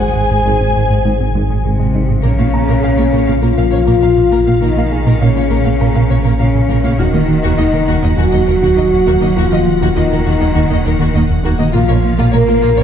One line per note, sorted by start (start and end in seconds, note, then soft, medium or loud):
0.00 2.23 G#1 medium
0.00 0.10 G#3 medium
0.00 1.65 G#4 medium
0.00 1.48 C5 medium
0.00 1.61 F#5 soft
0.00 1.65 G#5 medium
0.16 0.25 G#2 medium
0.30 0.40 G#2 medium
0.30 0.37 G#2 soft
0.30 0.39 G#4 soft
0.45 0.51 G#1 medium
0.45 0.52 G#1 soft
0.45 0.55 G#2 medium
0.45 0.52 G#2 medium
0.45 0.55 G#3 medium
0.61 0.67 G#2 soft
0.61 0.70 G#2 soft
0.61 0.70 C4 medium
0.75 0.81 G#1 soft
0.75 0.82 G#2 soft
0.75 0.85 G#2 soft
0.75 0.85 G#4 soft
0.90 0.99 G#2 medium
0.90 0.96 G#2 medium
0.90 0.99 G#3 medium
1.04 1.11 G#1 soft
1.04 1.11 G#2 soft
1.04 1.14 G#3 soft
1.04 1.14 D#4 medium
1.20 1.29 G#2 medium
1.20 1.26 G#2 soft
1.20 1.29 C4 medium
1.34 1.40 G#1 medium
1.34 1.41 G#1 medium
1.34 1.41 G#2 medium
1.34 1.44 G#2 medium
1.34 1.44 G#3 medium
1.50 1.56 G#2 soft
1.50 1.59 G#2 medium
1.50 1.59 G#4 medium
1.64 1.70 G#1 soft
1.64 1.71 G#1 soft
1.64 1.70 G#2 soft
1.64 1.74 G#2 medium
1.64 2.20 C3 soft
1.64 2.20 C4 medium
1.64 1.74 G#4 soft
1.80 1.86 G#2 medium
1.80 1.89 G#2 medium
1.80 1.89 G#3 medium
1.94 2.00 G#1 soft
1.94 2.00 G#2 soft
1.94 2.04 G#3 soft
1.94 2.04 D#4 medium
2.09 2.15 G#2 soft
2.09 2.18 G#2 soft
2.09 2.18 G#4 medium
2.23 7.01 A#1 medium
2.23 2.30 A#1 medium
2.23 2.33 A#2 medium
2.23 3.43 C#3 medium
2.23 2.29 A#3 medium
2.23 2.33 A#3 medium
2.23 3.40 C#4 medium
2.23 2.29 A#4 medium
2.23 6.95 F5 soft
2.38 2.44 A#1 soft
2.38 2.45 A#3 soft
2.38 2.48 A#3 medium
2.38 2.48 F4 medium
2.38 2.45 F5 soft
2.54 2.63 A#3 medium
2.54 4.28 A#5 medium
2.68 2.74 A#1 medium
2.68 2.78 A#2 medium
2.68 2.74 A#3 medium
2.68 2.78 A#3 medium
2.68 2.75 A#4 medium
2.83 2.89 A#1 soft
2.83 2.93 A#2 medium
2.83 2.89 A#3 soft
2.83 2.92 A#4 medium
2.83 2.89 F5 soft
2.98 3.04 A#1 soft
2.98 3.04 A#3 soft
2.98 3.08 A#3 soft
2.98 3.07 F4 medium
2.98 3.04 C#5 soft
3.12 3.18 A#1 medium
3.12 3.22 A#2 medium
3.12 3.19 A#3 medium
3.12 3.22 A#3 medium
3.12 3.19 A#4 medium
3.27 3.33 A#1 soft
3.27 3.38 A#2 medium
3.27 3.34 A#3 soft
3.27 3.37 C#4 medium
3.27 3.33 F5 soft
3.42 3.48 A#1 medium
3.42 3.52 A#2 medium
3.42 4.60 F3 medium
3.42 3.52 A#3 medium
3.42 3.49 A#3 medium
3.42 4.59 F4 medium
3.42 3.48 A#4 medium
3.57 3.63 A#1 soft
3.57 3.67 A#2 medium
3.57 3.64 A#3 soft
3.57 3.67 A#4 medium
3.57 3.64 F5 soft
3.72 3.78 A#1 soft
3.72 3.82 A#2 medium
3.72 3.79 A#3 soft
3.72 3.82 C#4 medium
3.72 3.78 C#5 soft
3.87 3.93 A#1 medium
3.87 3.97 A#2 medium
3.87 3.93 A#3 soft
3.87 3.97 A#3 medium
3.87 3.93 A#4 medium
4.02 4.08 A#1 soft
4.02 4.12 A#2 medium
4.02 4.08 A#3 soft
4.02 4.11 A#4 medium
4.02 4.08 F5 soft
4.18 4.26 A#2 medium
4.31 4.37 A#1 medium
4.31 4.41 A#2 medium
4.31 4.38 A#3 medium
4.31 4.41 A#3 medium
4.31 4.38 A#4 medium
4.46 4.52 A#1 soft
4.46 4.53 A#3 soft
4.46 4.56 A#3 medium
4.46 4.56 F4 medium
4.46 4.53 F5 soft
4.61 4.67 A#1 medium
4.61 4.71 A#2 medium
4.61 5.20 D#3 medium
4.61 4.68 A#3 medium
4.61 4.71 A#3 medium
4.61 5.20 D#4 medium
4.61 4.68 A#4 medium
4.76 4.82 A#1 soft
4.76 4.86 A#3 medium
4.76 4.84 A#3 soft
4.76 4.86 F4 medium
4.76 4.83 F5 soft
4.91 5.01 A#3 medium
4.91 6.65 G#4 soft
4.91 6.66 G#5 soft
5.06 5.12 A#1 medium
5.06 5.15 A#2 medium
5.06 5.15 A#3 medium
5.06 5.13 A#3 medium
5.06 5.13 A#4 medium
5.21 5.27 A#1 soft
5.21 5.30 A#2 medium
5.21 6.38 C#3 medium
5.21 5.28 A#3 soft
5.21 6.37 C#4 medium
5.21 5.31 A#4 medium
5.21 5.28 F5 soft
5.35 5.41 A#1 soft
5.35 5.42 A#3 soft
5.35 5.45 A#3 medium
5.35 5.45 F4 medium
5.35 5.42 C#5 soft
5.50 5.56 A#1 medium
5.50 5.60 A#2 medium
5.50 5.60 A#3 medium
5.50 5.57 A#3 medium
5.50 5.56 A#4 medium
5.65 5.72 A#1 soft
5.65 5.75 A#2 medium
5.65 5.72 A#3 soft
5.65 5.75 C#4 medium
5.65 5.71 F5 soft
5.80 5.86 A#1 medium
5.80 5.90 A#2 medium
5.80 5.87 A#3 medium
5.80 5.90 A#3 medium
5.80 5.86 A#4 medium
5.80 7.55 A#5 soft
5.95 6.01 A#1 soft
5.95 6.05 A#2 medium
5.95 6.01 A#3 soft
5.95 6.05 A#4 medium
5.95 6.01 F5 soft
6.10 6.16 A#1 soft
6.10 6.19 A#2 medium
6.10 6.16 A#3 soft
6.10 6.19 C#4 medium
6.10 6.16 C#5 soft
6.24 6.31 A#1 medium
6.24 6.34 A#2 medium
6.24 6.31 A#3 soft
6.24 6.34 A#3 medium
6.24 6.30 A#4 medium
6.39 6.46 A#1 soft
6.39 6.49 A#2 medium
6.39 6.98 C#3 medium
6.39 6.45 A#3 soft
6.39 6.98 C#4 medium
6.39 6.48 A#4 medium
6.39 6.46 F5 soft
6.55 6.64 A#2 medium
6.69 6.75 A#1 medium
6.69 6.78 A#2 medium
6.69 6.78 A#3 medium
6.69 6.76 A#3 medium
6.69 6.76 A#4 medium
6.84 6.90 A#1 soft
6.84 6.90 A#3 soft
6.84 6.93 A#3 medium
6.84 6.93 F4 medium
6.84 6.91 F5 medium
6.98 11.76 D#1 medium
6.98 7.05 D#2 medium
6.98 7.08 D#2 medium
6.98 7.08 D#3 medium
6.98 8.18 D#3 medium
6.98 7.05 A#3 medium
6.98 8.16 D#4 medium
6.98 8.73 F#4 soft
6.98 7.05 F#4 medium
6.98 11.75 F#5 medium
6.98 8.74 F6 soft
7.14 7.20 D#2 soft
7.14 7.23 D#3 medium
7.14 7.20 A#3 soft
7.14 7.23 A#3 medium
7.14 7.20 D#5 soft
7.29 7.38 D#3 medium
7.43 7.49 D#2 medium
7.43 7.53 D#2 medium
7.43 7.52 D#3 medium
7.43 7.50 A#3 medium
7.43 7.50 F#4 medium
7.58 7.64 D#2 soft
7.58 7.68 D#2 medium
7.58 7.64 A#3 soft
7.58 7.68 D#4 medium
7.58 7.64 D#5 soft
7.72 7.79 D#2 soft
7.72 7.82 D#3 medium
7.72 7.79 A#3 soft
7.72 7.82 A#3 medium
7.72 7.79 A#4 soft
7.87 7.94 D#2 medium
7.87 7.97 D#2 medium
7.87 7.97 D#3 medium
7.87 7.94 A#3 medium
7.87 7.94 F#4 medium
8.02 8.09 D#2 soft
8.02 8.12 D#2 medium
8.02 8.12 F#3 medium
8.02 8.08 A#3 soft
8.02 8.09 D#5 soft
8.17 8.24 D#2 medium
8.17 8.27 D#2 medium
8.17 8.27 D#3 medium
8.17 9.34 F#3 medium
8.17 8.24 A#3 medium
8.17 8.23 F#4 medium
8.17 9.34 F#4 medium
8.17 9.93 G#5 soft
8.32 8.39 D#2 soft
8.32 8.42 D#2 medium
8.32 8.39 A#3 soft
8.32 8.42 D#4 medium
8.32 8.38 D#5 soft
8.47 8.54 D#2 soft
8.47 8.57 D#2 medium
8.47 8.56 F#3 medium
8.47 8.53 A#3 soft
8.47 8.53 A#4 soft
8.62 8.68 D#2 medium
8.62 8.72 D#2 medium
8.62 8.71 D#3 medium
8.62 8.68 A#3 medium
8.62 8.69 F#4 medium
8.77 8.83 D#2 soft
8.77 8.87 D#2 medium
8.77 8.83 A#3 soft
8.77 8.86 D#4 medium
8.77 8.84 D#5 soft
8.93 9.02 D#2 medium
9.07 9.13 D#2 medium
9.07 9.16 D#2 medium
9.07 9.16 D#3 medium
9.07 9.13 A#3 medium
9.07 9.13 F#4 medium
9.21 9.27 D#2 soft
9.21 9.31 D#3 medium
9.21 9.27 A#3 soft
9.21 9.31 A#3 medium
9.21 9.28 D#5 medium
9.35 9.42 D#2 medium
9.35 9.46 D#2 medium
9.35 9.45 D#3 medium
9.35 9.96 F3 medium
9.35 9.41 A#3 medium
9.35 9.96 F4 medium
9.35 9.44 F#4 medium
9.51 9.57 D#2 soft
9.51 9.61 D#3 medium
9.51 9.60 A#3 medium
9.51 9.57 A#3 soft
9.51 9.58 D#5 soft
9.68 9.76 D#3 medium
9.81 9.87 D#2 medium
9.81 9.91 D#2 medium
9.81 9.90 D#3 medium
9.81 9.87 A#3 medium
9.81 9.88 F#4 medium
9.95 10.02 D#2 soft
9.95 10.06 D#2 medium
9.95 11.13 D#3 medium
9.95 10.02 A#3 soft
9.95 10.05 D#4 medium
9.95 11.15 D#4 medium
9.95 10.03 D#5 soft
10.10 10.17 D#2 medium
10.10 10.20 D#3 medium
10.10 10.19 A#3 medium
10.10 10.17 A#3 soft
10.10 10.18 A#4 soft
10.25 10.32 D#2 medium
10.25 10.36 D#2 medium
10.25 10.34 D#3 medium
10.25 10.32 A#3 medium
10.25 10.32 F#4 medium
10.40 10.47 D#2 soft
10.40 10.51 D#2 medium
10.40 10.49 F#3 medium
10.40 10.47 A#3 medium
10.40 10.47 D#5 soft
10.55 10.61 D#2 medium
10.55 10.65 D#2 medium
10.55 10.64 D#3 medium
10.55 10.62 A#3 medium
10.55 10.61 F#4 medium
10.70 10.76 D#2 soft
10.70 10.80 D#2 medium
10.70 10.76 A#3 soft
10.70 10.79 D#4 medium
10.70 10.77 D#5 medium
10.84 10.91 D#2 soft
10.84 10.95 D#2 medium
10.84 10.94 F#3 medium
10.84 10.92 A#3 soft
10.84 10.92 A#4 medium
10.99 11.06 D#2 medium
10.99 11.09 D#2 medium
10.99 11.08 D#3 medium
10.99 11.06 A#3 medium
10.99 11.06 F#4 medium
11.14 11.20 D#2 medium
11.14 11.24 D#2 medium
11.14 11.21 A#3 medium
11.14 11.23 D#4 medium
11.14 11.21 D#5 soft
11.31 11.39 D#2 medium
11.44 11.50 D#2 medium
11.44 11.54 D#2 medium
11.44 11.53 D#3 medium
11.44 11.51 A#3 medium
11.44 11.51 F#4 medium
11.59 11.65 D#2 medium
11.59 11.69 D#3 medium
11.59 11.68 A#3 medium
11.59 11.65 A#3 medium
11.59 11.66 D#5 medium
11.73 11.80 A#1 medium
11.73 12.84 A#1 medium
11.73 11.84 A#2 medium
11.73 12.30 F3 medium
11.73 11.83 A#3 medium
11.73 11.80 A#3 medium
11.73 12.29 F4 medium
11.73 11.80 F4 medium
11.73 12.84 F5 medium
11.89 11.95 A#1 medium
11.89 11.95 A#3 soft
11.89 11.99 A#3 medium
11.89 11.98 F4 medium
11.89 11.95 C#5 soft
12.05 12.14 A#3 medium
12.18 12.25 A#1 medium
12.18 12.29 A#2 medium
12.18 12.24 A#3 medium
12.18 12.28 A#3 medium
12.18 12.25 F4 medium
12.33 12.40 A#1 medium
12.33 12.44 A#2 medium
12.33 12.39 A#3 medium
12.33 12.79 A#3 medium
12.33 12.43 A#4 medium
12.33 12.79 A#4 medium
12.33 12.39 C#5 soft
12.48 12.55 A#1 medium
12.48 12.54 A#3 soft
12.48 12.58 A#3 medium
12.48 12.57 F4 medium
12.48 12.54 A#4 soft
12.62 12.70 A#1 medium
12.62 12.73 A#2 medium
12.62 12.69 A#3 medium
12.62 12.72 A#3 medium
12.62 12.68 F4 medium
12.77 12.84 A#1 soft
12.77 12.84 A#2 medium
12.77 12.84 A#3 medium
12.77 12.84 C4 medium
12.77 12.84 C#4 medium
12.77 12.84 C5 medium
12.77 12.83 C#5 medium